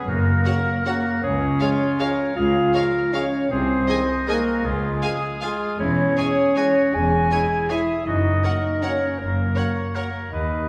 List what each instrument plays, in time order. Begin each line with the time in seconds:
0.07 double bass section F#1, timpani F#2, cello section F#2, french horn section A#3, oboe F#4, flute A#4, clarinet A#4
0.46 trombone section C#3 F#3, viola section F#4, oboe A#4, violin section C#5 F#5
0.84 trombone section C#3 F#3, french horn section A#3, viola section F#4, oboe F#4, clarinet A#4, flute A#4, violin section C#5 F#5
1.22 cello section C#2, double bass section C#2, french horn section C#4, oboe G#4, clarinet C#5, flute C#5
1.60 trombone section F3 G#3, oboe F4, viola section G#4, violin section C#5 F5
2.00 trombone section F3 G#3, viola section G#4, oboe A#4, violin section C#5 F5
2.36 double bass section C#2, cello section C#2, french horn section F4, oboe G#4, clarinet F5, flute F5
2.74 trombone section F3 G#3, viola section G#4, oboe A#4, violin section C#5 F5
3.13 trombone section F3 G#3, french horn section C#4, viola section G#4, violin section C#5 F5, flute C#5, clarinet C#5
3.49 double bass section C2, cello section C2, french horn section C4, oboe G#4, clarinet C5, flute C5
3.88 trombone section D#3 G#3, oboe D#4, viola section G#4, violin section D#5 G#5
4.27 trombone section D#3 G#3, french horn section A#3, oboe F#4, viola section G#4, clarinet A#4, flute A#4, violin section D#5 G#5
4.65 double bass section C#2, cello section C#2, french horn section G#3, oboe F4, clarinet G#4, flute G#4
5.03 trombone section F3 G#3, viola section G#4, oboe G#4, violin section F5 G#5
5.41 trombone section F3 G#3, french horn section G#3, oboe F4, clarinet G#4, flute G#4, viola section G#4, violin section F5 G#5
5.79 double bass section E1, cello section E2, french horn section C#4, oboe E4, clarinet C#5, flute C#5
6.17 trombone section E3 G#3, viola section G#4, oboe G#4, violin section C#5 G#5
6.56 trombone section E3 G#3, oboe F#4, viola section G#4, violin section C#5 G#5
6.94 double bass section E1, cello section E2, french horn section G#4, flute G#5, clarinet G#5
7.31 trombone section E3 G#3, oboe E4, viola section G#4, violin section C#5 G#5
7.69 trombone section E3 G#3, french horn section E4, viola section G#4, oboe G#4, violin section C#5 G#5, clarinet E5, flute E5
8.06 double bass section F#1, cello section F#2, french horn section D#4, oboe F#4, flute D#5, clarinet D#5
8.44 trombone section F#3 A#3, viola section A#4, oboe A#4, violin section C#5 F#5
8.82 trombone section F#3 A#3, french horn section C#4, viola section A#4, clarinet C#5, flute C#5, violin section C#5 F#5
9.18 double bass section F#1, cello section F#2, french horn section A#3, flute A#4, clarinet A#4
9.56 trombone section F#3 A#3, viola section A#4, violin section C#5 F#5, oboe C#5
9.95 trombone section F#3 A#3, oboe A#4, viola section A#4, violin section C#5 F#5
10.31 double bass section D#2, cello section D#2, french horn section D#4, oboe B4, flute D#5, clarinet D#5